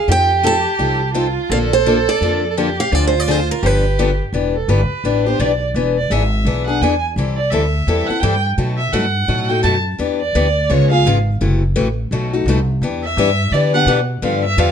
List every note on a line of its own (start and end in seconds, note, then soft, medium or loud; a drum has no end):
0.08 0.65 F2 medium
0.08 0.29 F3 medium
0.08 0.29 C4 medium
0.08 0.29 D#4 medium
0.08 1.13 G4 medium
0.08 0.30 A4 medium
0.08 0.43 G5 loud
0.43 0.55 F3 medium
0.43 0.55 C4 medium
0.43 0.55 D#4 medium
0.43 0.55 A4 loud
0.43 1.34 A5 loud
0.79 1.36 C2 medium
0.79 1.00 F3 medium
0.79 1.00 C4 medium
0.79 1.00 D#4 medium
0.79 1.01 A4 medium
1.14 1.26 F3 medium
1.14 1.26 C4 medium
1.14 1.26 D#4 medium
1.14 1.52 F4 medium
1.14 1.26 A4 loud
1.50 2.07 A#1 medium
1.50 1.72 D3 medium
1.50 1.72 F3 medium
1.50 1.72 A#3 medium
1.50 1.72 D4 medium
1.50 2.50 A4 loud
1.50 1.72 A4 medium
1.50 1.57 F5 loud
1.73 2.09 C5 loud
1.86 1.97 D3 medium
1.86 1.97 F3 medium
1.86 1.97 A#3 medium
1.86 1.97 D4 medium
1.86 1.97 A4 loud
2.09 2.54 D5 medium
2.21 2.78 F2 medium
2.21 2.42 D3 medium
2.21 2.43 F3 medium
2.21 2.43 A#3 medium
2.21 2.43 D4 medium
2.21 2.43 A4 medium
2.50 2.59 A4 medium
2.57 2.68 D3 medium
2.57 2.68 F3 medium
2.57 2.68 A#3 medium
2.57 2.68 D4 medium
2.57 2.93 G4 medium
2.57 2.68 A4 loud
2.80 2.95 F5 medium
2.92 3.49 D2 medium
2.92 3.13 D3 medium
2.92 3.13 F3 medium
2.92 3.13 C4 medium
2.92 3.13 D4 medium
2.92 3.64 F4 medium
2.92 3.13 G#4 medium
2.92 3.05 D5 loud
3.07 3.20 C5 medium
3.20 3.31 D5 medium
3.28 3.39 D3 medium
3.28 3.39 F3 medium
3.28 3.39 C4 medium
3.28 3.39 D4 medium
3.28 3.39 G#4 medium
3.28 3.51 C5 medium
3.51 3.66 A#4 medium
3.62 4.19 G1 medium
3.62 3.84 D3 medium
3.62 3.84 F3 medium
3.62 3.84 B3 medium
3.62 3.84 D4 medium
3.62 4.19 G4 medium
3.62 3.84 G4 medium
3.62 4.21 B4 medium
3.99 4.10 D3 medium
3.99 4.10 F3 medium
3.99 4.10 B3 medium
3.99 4.10 D4 medium
3.99 4.10 G4 medium
4.33 4.67 E1 medium
4.33 4.54 E3 medium
4.33 4.54 B3 medium
4.33 4.55 D4 medium
4.33 4.55 G4 medium
4.55 4.71 A4 medium
4.68 4.89 G1 medium
4.68 4.80 E3 medium
4.68 4.80 B3 medium
4.68 4.80 D4 medium
4.68 4.80 G4 medium
4.68 5.26 B4 medium
5.04 5.38 A1 medium
5.04 5.25 E3 medium
5.04 5.25 B3 medium
5.04 5.25 D4 medium
5.04 5.25 G4 medium
5.26 5.38 B3 soft
5.26 5.39 D4 soft
5.26 5.39 G4 medium
5.26 5.42 C5 medium
5.39 5.74 B1 medium
5.39 5.51 E3 medium
5.39 5.51 B3 medium
5.39 5.51 D4 medium
5.39 5.51 G4 medium
5.39 5.61 D5 medium
5.74 6.09 E1 medium
5.74 5.96 E3 medium
5.74 5.96 B3 medium
5.74 5.96 D4 medium
5.74 5.96 G#4 medium
5.98 6.13 D5 medium
6.10 6.44 G#1 medium
6.10 6.22 E3 medium
6.10 6.22 B3 medium
6.10 6.22 D4 medium
6.10 6.22 G#4 medium
6.10 6.66 E5 medium
6.45 6.80 B1 medium
6.45 6.67 E3 medium
6.45 6.67 B3 medium
6.45 6.67 D4 medium
6.45 6.66 G#4 medium
6.67 6.82 B3 soft
6.67 6.82 D4 medium
6.67 6.81 G#4 medium
6.67 6.83 F#5 medium
6.81 7.16 E2 medium
6.81 6.93 E3 medium
6.81 6.93 B3 medium
6.81 6.93 D4 medium
6.81 6.93 G#4 loud
6.81 7.03 G#5 medium
7.16 7.51 C2 medium
7.16 7.38 E3 medium
7.16 7.38 G3 medium
7.16 7.38 C4 medium
7.16 7.38 E4 medium
7.16 7.38 A4 medium
7.37 7.52 D5 medium
7.50 7.86 D2 medium
7.50 7.63 E3 medium
7.50 7.63 G3 medium
7.50 7.63 C4 medium
7.50 7.63 E4 medium
7.50 7.64 A4 medium
7.50 8.09 E5 medium
7.87 8.07 E2 medium
7.87 8.08 E3 medium
7.87 8.08 G3 medium
7.87 8.08 C4 medium
7.87 8.09 E4 medium
7.87 8.08 A4 medium
8.07 8.22 C4 soft
8.07 8.22 E4 medium
8.07 8.22 A4 medium
8.07 8.22 F#5 medium
8.07 muted upright bass stroke soft
8.20 8.57 G2 medium
8.20 8.34 E3 medium
8.20 8.34 G3 medium
8.20 8.34 C4 medium
8.20 8.34 E4 medium
8.20 8.34 A4 loud
8.20 8.43 G5 medium
8.58 8.79 B2 medium
8.58 8.92 B2 medium
8.58 8.79 F#3 medium
8.58 8.79 A3 medium
8.58 8.79 D#4 medium
8.58 8.79 F#4 medium
8.77 8.94 E5 medium
8.93 9.27 G2 medium
8.93 9.04 B2 medium
8.93 9.04 F#3 medium
8.93 9.04 A3 medium
8.93 9.04 D#4 medium
8.93 9.05 F#4 medium
8.93 9.50 F#5 medium
9.28 9.63 A2 medium
9.28 9.49 B2 medium
9.28 9.49 F#3 medium
9.28 9.49 A3 medium
9.28 9.49 D#4 medium
9.28 9.48 F#4 medium
9.49 9.62 A3 soft
9.49 9.62 D#4 medium
9.49 9.63 F#4 soft
9.49 9.63 G5 medium
9.63 9.98 F#2 medium
9.63 9.74 B2 medium
9.63 9.75 F#3 medium
9.63 9.75 A3 medium
9.63 9.75 D#4 medium
9.63 9.75 F#4 medium
9.63 9.76 A5 medium
9.99 10.34 E2 medium
9.99 10.20 E3 medium
9.99 10.20 B3 medium
9.99 10.20 D4 medium
9.99 10.20 G4 medium
10.20 10.72 D5 medium
10.35 10.69 D2 medium
10.35 10.46 E3 medium
10.35 10.46 B3 medium
10.35 10.46 D4 medium
10.35 10.46 G4 loud
10.70 11.04 C#2 medium
10.70 10.90 C#3 medium
10.70 10.90 G#3 medium
10.70 10.91 B3 medium
10.70 10.91 F4 medium
10.70 10.90 G#4 medium
10.70 10.90 C#5 medium
10.91 11.06 B3 soft
10.91 11.05 F4 medium
10.91 11.05 G#4 medium
10.91 11.04 F5 loud
11.05 11.40 G#1 medium
11.05 11.17 C#3 medium
11.05 11.17 G#3 medium
11.05 11.17 B3 medium
11.05 11.17 F4 loud
11.05 11.17 G#4 loud
11.41 11.75 F#1 medium
11.41 11.62 C3 medium
11.41 11.61 E3 medium
11.41 11.62 A3 medium
11.41 11.62 E4 medium
11.41 11.62 F#4 medium
11.76 12.10 A1 medium
11.76 11.87 C3 medium
11.76 11.87 E3 medium
11.76 11.87 A3 medium
11.76 11.87 E4 medium
11.76 11.87 F#4 medium
12.11 12.45 B1 medium
12.11 12.32 B2 medium
12.11 12.32 F#3 medium
12.11 12.33 A3 medium
12.11 12.33 D#4 medium
12.11 12.32 F#4 medium
12.33 12.47 A3 soft
12.33 12.47 D#4 medium
12.33 12.46 F#4 medium
12.46 12.80 C2 medium
12.46 12.58 B2 medium
12.46 12.58 F#3 medium
12.46 12.59 A3 medium
12.46 12.59 D#4 medium
12.46 12.59 F#4 loud
12.82 13.16 E2 medium
12.82 13.03 E3 medium
12.82 13.03 B3 medium
12.82 13.03 D4 medium
12.82 13.03 G4 medium
13.04 13.54 E5 loud
13.17 13.51 G2 loud
13.17 13.29 E3 medium
13.17 13.29 B3 medium
13.17 13.29 D4 loud
13.17 13.29 G4 loud
13.51 13.86 D3 medium
13.51 13.74 E3 medium
13.51 13.74 B3 medium
13.51 13.74 D4 medium
13.51 13.73 G4 medium
13.51 13.73 D5 medium
13.74 13.87 B3 medium
13.74 13.87 D4 medium
13.74 13.87 G4 medium
13.74 13.82 F#5 loud
13.87 14.21 B2 medium
13.87 13.99 E3 medium
13.87 13.99 B3 loud
13.87 13.99 D4 loud
13.87 13.99 G4 loud
14.22 14.57 G2 medium
14.22 14.43 D3 medium
14.22 14.44 F3 medium
14.22 14.43 B3 medium
14.22 14.44 D4 medium
14.22 14.44 G4 medium
14.22 14.43 F5 medium
14.45 14.60 E5 loud
14.57 14.72 E2 medium
14.57 14.69 D3 medium
14.57 14.69 F3 medium
14.57 14.69 B3 medium
14.57 14.69 D4 medium
14.57 14.69 G4 loud
14.57 14.72 F5 medium